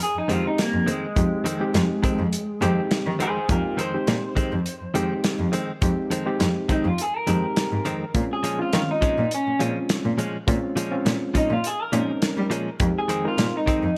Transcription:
0.00 clean electric guitar G#4, closed hi-hat
0.15 cello F2, clean electric guitar D#4
0.28 clean electric guitar F2 D#3 G#3 C4 F4, cello F2, reed electric piano G#3 C4 D#4 G4, closed hi-hat
0.47 clean electric guitar D#4
0.58 clean electric guitar A#3, snare, closed hi-hat
0.73 cello F2
0.86 clean electric guitar F2 D#3 G#3 C4, closed hi-hat
1.16 cello F2, reed electric piano G#3 C4 D#4 G4, kick, closed hi-hat
1.44 clean electric guitar F2 D#3 G#3 C4, closed hi-hat
1.60 reed electric piano G#3 C4 D#4 G4
1.74 cello F2, snare, closed hi-hat
2.03 clean electric guitar F2 D#3 G#3 C4, kick, closed hi-hat
2.19 cello F2
2.33 closed hi-hat
2.61 clean electric guitar F2 D#3 G#3 C4, cello F2, reed electric piano G#3 C4 D#4 G4, closed hi-hat
2.91 snare, closed hi-hat
3.06 cello D#3
3.19 clean electric guitar F2 D#3 G#3 C4 G#4 C5, closed hi-hat
3.49 cello F2, reed electric piano G#3 C4 D#4 G4, clean electric guitar F4 A#4, kick, closed hi-hat
3.77 clean electric guitar F2 D#3 G#3 C4 C5, closed hi-hat
3.93 reed electric piano G#3 C4 D#4 G4
4.07 cello A#2, snare, closed hi-hat
4.35 clean electric guitar F2 D#3 G#3 C4, kick, closed hi-hat
4.52 cello F2
4.66 closed hi-hat
4.81 cello F2
4.94 clean electric guitar F2 D#3 G#3 C4, cello F2, reed electric piano G#3 C4 D#4 G4, closed hi-hat
5.24 snare, closed hi-hat
5.39 cello F2
5.52 clean electric guitar F2 D#3 G#3 C4, closed hi-hat
5.81 cello F2, reed electric piano G#3 C4 D#4 G4, kick, closed hi-hat
6.11 clean electric guitar F2 D#3 G#3 C4, closed hi-hat
6.26 reed electric piano G#3 C4 D#4 G4
6.40 cello F2, snare, closed hi-hat
6.69 clean electric guitar F2 D#3 G#3 C4 D#4, kick, closed hi-hat
6.85 cello F2, clean electric guitar F4
6.98 clean electric guitar G#4, closed hi-hat
7.16 clean electric guitar A#4
7.27 clean electric guitar F2 D#3 G#3 C4, cello F2, reed electric piano G#3 C4 D#4 G4, closed hi-hat
7.56 snare, closed hi-hat
7.72 cello G#2
7.85 clean electric guitar F2 D#3 G#3 C4, closed hi-hat
8.14 cello A#2, reed electric piano G#3 C4 C#4 F4, kick, closed hi-hat
8.33 clean electric guitar G#4
8.43 clean electric guitar A#2 F3 G#3 C#4, closed hi-hat
8.58 reed electric piano G#3 C4 C#4 F4, clean electric guitar F4
8.73 cello D#3, snare, closed hi-hat
8.91 clean electric guitar D#4
9.01 clean electric guitar A#2 F3 G#3 C#4, kick, closed hi-hat
9.18 cello A#2
9.31 clean electric guitar C#4, closed hi-hat
9.47 cello A#2
9.59 clean electric guitar A#2 F3 G#3 C#4, cello A#2, reed electric piano G#3 C4 C#4 F4, closed hi-hat
9.89 snare, closed hi-hat
10.05 cello A#2
10.18 clean electric guitar A#2 F3 G#3 C#4, closed hi-hat
10.47 cello A#2, reed electric piano G#3 C4 C#4 F4, kick, closed hi-hat
10.76 clean electric guitar A#2 F3 G#3 C#4, closed hi-hat
10.91 reed electric piano G#3 C4 C#4 F4
11.05 cello A#2, snare, closed hi-hat
11.34 clean electric guitar A#2 F3 G#3 C#4 D#4, kick, closed hi-hat
11.50 cello A#2, clean electric guitar F4
11.64 clean electric guitar G#4, closed hi-hat
11.82 clean electric guitar A#4
11.92 clean electric guitar A#2 F3 G#3 C#4, cello A#2, reed electric piano G#3 C4 C#4 D#4, closed hi-hat
12.22 snare, closed hi-hat
12.37 cello G3
12.50 clean electric guitar A#2 F3 G#3 C#4, closed hi-hat
12.80 cello F2, reed electric piano G#3 C4 D#4 G4, kick, closed hi-hat
12.98 clean electric guitar G#4
13.08 clean electric guitar F2 D#3 G#3 C4, closed hi-hat
13.24 reed electric piano G#3 C4 D#4 A#4, clean electric guitar F4
13.38 cello A#2, snare, closed hi-hat
13.57 clean electric guitar D#4
13.66 clean electric guitar F2 D#3 G#3 C4, kick, closed hi-hat
13.83 cello F2

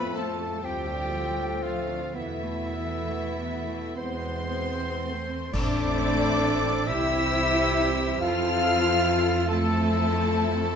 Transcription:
Already playing: double bass section F2, trombone section A2 A3, viola section A3 A4, cello section B3, bassoon C4, french horn section C4 F4, clarinet A4, violin section B4 B5, oboe B4, flute B5
0.14 cello section A3, viola section C4 F4, violin section A4 A5, oboe A4, flute A5
0.39 viola section A3 A4
0.62 double bass section D2, trombone section A2 A3, viola section F3 C4, cello section G3, french horn section C4 F4, bassoon C4, violin section G4 G5, oboe G4, clarinet A4, flute G5
0.87 viola section A3 D4
1.11 viola section F3 C4
1.36 viola section A3 D4
1.61 viola section F3 C4, cello section F3, violin section F4 F5, oboe F4, flute F5
1.87 viola section A3 D4
2.14 double bass section E2, trombone section B2 A3, cello section E3, viola section B3, bassoon B3, french horn section B3 E4, violin section E4 E5, oboe E4, clarinet A4, flute E5
2.43 viola section A3
2.73 viola section B3
3.05 viola section A3
3.37 viola section B3
3.67 viola section A3
3.96 double bass section E2, trombone section B2 G#3, bassoon B3, french horn section B3 C4 E4, viola section B3, cello section C4, oboe C5, clarinet C5, flute C5, violin section C6
4.51 viola section G#3
5.04 viola section A3
5.53 double bass section A1, trombone section E3 C4, viola section A3 C4, cello section D4, french horn section D4, violin section E4 C5 D6, trumpet section A4, flute D5, oboe D5, clarinet D5, concert bass drum, crash
6.87 double bass section C2, viola section G3 C4, french horn section E4, cello section E4, violin section E4 C5 E6, trumpet section G4, oboe E5, clarinet E5, flute E5
8.20 double bass section F2, viola section F3 C4, violin section E4 A4 F6, french horn section F4, cello section F4, trumpet section A4, flute F5, oboe F5, clarinet F5
9.48 viola section F3 C4, cello section A3, french horn section A3, violin section E4 A4 A5, oboe A4, flute A4, clarinet A4

